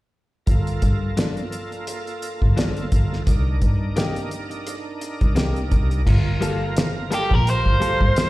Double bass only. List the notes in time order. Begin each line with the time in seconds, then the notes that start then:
0.47 G1
0.82 G2
2.42 G1
2.92 G1
3.27 C2
3.62 G2
5.21 C2
5.72 C2
6.07 G1
7.31 A#1
7.66 G1
8.01 G2